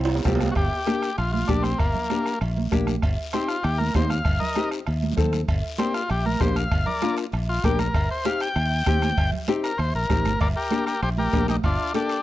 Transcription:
Already playing: C2 C4
0.05 high timbale
0.15 low timbale
0.25 C2 C4 F4 G4, bombo low, bombo rim, high conga, low conga, low timbale, short guiro
0.35 low timbale
0.41 bombo rim, high conga, short guiro
0.46 low timbale
0.52 F#4, cowbell, long guiro
0.56 G1 G4, bombo low, bombo rim, high conga
0.86 A#3 D4 G4, bombo rim, high conga, short guiro
1.02 bombo rim, short guiro
1.18 A#1 F4, bombo rim, cowbell, high conga, long guiro
1.33 F4, high conga
1.47 A#1 A#3 D4 G4, bombo low, bombo rim, high conga, short guiro
1.62 C4, bombo rim, high conga, short guiro
1.78 G1 A#3, bombo low, bombo rim, cowbell, long guiro
1.95 low conga
2.10 A#3 D4 G4, bombo rim, high conga, short guiro
2.26 bombo rim, short guiro
2.41 A#1, bombo rim, cowbell, high conga, long guiro
2.57 high conga
2.72 A#1 A#3 D4 G4, bombo low, bombo rim, high conga, low conga, short guiro
2.87 bombo rim, high conga, short guiro
3.02 G1, bombo low, bombo rim, cowbell, high conga, long guiro
3.33 C4 D#4 G4, bombo rim, high conga, short guiro
3.48 F4, bombo rim, short guiro
3.63 D#2 G4, bombo rim, cowbell, high conga, long guiro
3.78 A#4, high conga
3.94 D#2 C4 D#4 G4 C5, bombo low, bombo rim, high conga, low timbale, short guiro
4.10 F5, bombo rim, high conga, short guiro
4.25 G1, bombo low, bombo rim, cowbell, high conga, long guiro
4.40 A#4 D#5, low conga
4.56 C4 D#4 G4, bombo rim, high conga, short guiro
4.71 bombo rim, short guiro
4.87 D#2, bombo rim, cowbell, high conga, long guiro
5.03 high conga
5.12 low conga
5.17 D#2 C4 D#4 A4, bombo low, bombo rim, short guiro
5.22 low conga
5.33 bombo rim, low conga, short guiro
5.48 G1, bombo low, bombo rim, cowbell, high conga, long guiro
5.78 A#3 C4 D4 G4, bombo rim, high conga, short guiro
5.94 F4, bombo rim, short guiro
6.10 A#1 G4, bombo rim, cowbell, high conga, long guiro
6.26 A#4, high conga
6.40 A#1 A#3 D4 G4 C5, bombo low, bombo rim, high conga, low timbale, short guiro
6.56 F5, bombo rim, short guiro
6.71 G1, bombo low, bombo rim, cowbell, high conga, long guiro
6.86 A#4 D5, low conga
7.02 A#3 D4 F4, bombo rim, high conga, short guiro
7.17 bombo rim, short guiro
7.32 A#1, bombo rim, cowbell, high conga, long guiro
7.49 F4
7.64 A#1 A#3 D4 G4 A#4, bombo low, bombo rim, high conga, low conga, low timbale, short guiro
7.79 A#4, bombo rim, high conga, short guiro
7.94 G1, bombo low, bombo rim, cowbell, long guiro
8.11 C5
8.25 C4 D#4 G4 F5, bombo rim, high conga, short guiro
8.40 G5, bombo rim, short guiro
8.56 D#2, bombo rim, cowbell, high conga, long guiro
8.86 D#2 C4 D#4 G4, bombo low, bombo rim, high conga, short guiro
9.02 bombo rim, high conga, short guiro
9.17 G1, bombo low, bombo rim, cowbell, high conga, long guiro
9.33 low conga
9.48 C4 D#4 G4, bombo rim, high conga, short guiro
9.64 A#4, bombo rim, short guiro
9.78 D#2 C5, bombo rim, cowbell, high conga, long guiro
9.95 A#1 A#4
10.09 A1 C4 D#4 G4, bombo low, bombo rim, high conga, low conga, short guiro
10.25 G1, bombo rim, high conga, short guiro
10.40 G1 A#4 D5, bombo low, bombo rim, cowbell, high conga, long guiro
10.56 G4 A#4
10.71 A#3 D4 G4, bombo rim, high conga, short guiro
10.86 G4 A#4, bombo rim, short guiro
11.02 A#1 G4 C5, bombo rim, cowbell, high conga, long guiro
11.18 G4 A#4, high conga
11.33 A#1 A#3 D4 G4, bombo low, bombo rim, high conga, low timbale, short guiro
11.48 D#4 G4, bombo rim, high conga, short guiro
11.63 G1 D4 F4, bombo low, bombo rim, cowbell, high conga, long guiro
11.94 A#3 D4 G4 A4, bombo rim, high conga, short guiro
12.09 bombo rim, short guiro

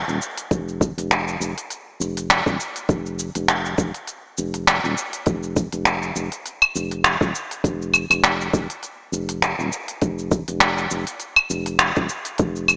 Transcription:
0.08 D#1, shaker
0.22 shaker
0.38 open hi-hat, shaker
0.51 F1, kick, open hi-hat, shaker
0.69 shaker
0.81 kick, shaker
0.98 F1, open hi-hat, shaker
1.11 finger snap, open hi-hat, shaker
1.28 shaker
1.40 F1, shaker
1.57 open hi-hat, shaker
1.70 open hi-hat, shaker
2.00 F1, shaker
2.17 open hi-hat, shaker
2.30 finger snap, open hi-hat, shaker
2.46 D#1, kick, shaker
2.60 shaker
2.76 open hi-hat, shaker
2.89 F1, kick, open hi-hat, shaker
3.06 shaker
3.19 shaker
3.35 F1, open hi-hat, shaker
3.48 finger snap, open hi-hat, shaker
3.66 shaker
3.78 F1, kick, shaker
3.95 open hi-hat, shaker
4.08 open hi-hat, shaker
4.38 F1, shaker
4.54 open hi-hat, shaker
4.67 finger snap, open hi-hat, shaker
4.84 D#1, shaker
4.98 shaker
5.13 open hi-hat, shaker
5.26 F1, kick, open hi-hat, shaker
5.43 shaker
5.57 kick, shaker
5.72 F1, open hi-hat, shaker
5.85 finger snap, open hi-hat, shaker
6.03 shaker
6.16 F1, shaker
6.32 open hi-hat, shaker
6.46 open hi-hat, shaker
6.62 claves
6.76 F1, shaker
6.92 open hi-hat, shaker
7.05 finger snap, open hi-hat, shaker
7.21 D#1, kick, shaker
7.35 shaker
7.52 open hi-hat, shaker
7.64 F1, kick, open hi-hat, shaker
7.82 shaker
7.94 claves, shaker
8.10 F1, open hi-hat, claves, shaker
8.23 finger snap, open hi-hat, shaker
8.41 shaker
8.53 F1, kick, shaker
8.70 open hi-hat, shaker
8.83 open hi-hat, shaker
9.12 F1, shaker
9.29 open hi-hat, shaker
9.43 finger snap, open hi-hat, shaker
9.59 D#1, shaker
9.72 shaker
9.88 open hi-hat, shaker
10.01 F1, kick, open hi-hat, shaker
10.19 shaker
10.31 kick, shaker
10.48 F1, open hi-hat, shaker
10.60 finger snap, open hi-hat, shaker
10.78 shaker
10.91 F1, shaker
11.07 open hi-hat, shaker
11.20 open hi-hat, shaker
11.36 claves
11.50 F1, shaker
11.66 open hi-hat, shaker
11.79 finger snap, open hi-hat, shaker
11.96 D#1, kick, shaker
12.09 shaker
12.25 open hi-hat, shaker
12.38 F1, kick, open hi-hat, shaker
12.56 shaker
12.68 claves, shaker

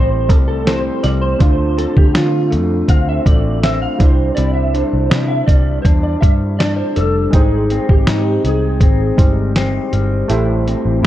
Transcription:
Already playing: A1 A2 G3 A3 C4 E4 G4 C5
0.29 C2 G3 A4, kick, closed hi-hat
0.48 A4
0.65 A3 C4 E4 G4 C5, snare, closed hi-hat
1.03 C2 G3 D5, snare, closed hi-hat
1.22 C5
1.39 D2 D3 A3 D4 F4, kick, closed hi-hat
1.44 C5
1.77 C4 A4, closed hi-hat
1.97 D2 G4, kick
2.14 D3 F4, snare, closed hi-hat
2.51 F2 A3, closed hi-hat
2.88 D2 C4 F5, kick, closed hi-hat
3.09 E5
3.26 A1 A3 D5, kick, closed hi-hat
3.63 C4 E5, snare, closed hi-hat
3.82 F5
3.99 C2 C3 G3 D4 E4 C5, kick, closed hi-hat
4.04 C5
4.35 C2 C3 E4 D5, closed hi-hat
4.54 E5
4.74 D4 C5, closed hi-hat
4.93 C2
5.10 C3 E4 D5, snare, closed hi-hat
5.28 E5
5.47 C2 G3 D5, kick, closed hi-hat
5.82 E2 D4 C5, kick, closed hi-hat
6.03 D5
6.21 G2 G3 E5, kick, closed hi-hat
6.59 D4 D5, snare, closed hi-hat
6.76 C5
6.96 F1 G3 A4, closed hi-hat
7.31 G#1 G#3 D#4 G#4 G5, kick, closed hi-hat
7.35 D#4 C5
7.70 C4, closed hi-hat
7.89 G#1 G4, kick
8.07 G#2 D#4, snare, closed hi-hat
8.44 C2 G#4, closed hi-hat
8.81 G#1 C4, kick, closed hi-hat
9.17 G1 G3 G#3 D#4 G4 C5, kick, closed hi-hat
9.56 C4, snare, closed hi-hat
9.93 G1 G3, closed hi-hat
10.28 A1 A2 A3 E4 G4, closed hi-hat
10.33 C5
10.67 C4, closed hi-hat
10.85 A1
11.03 A2 E4

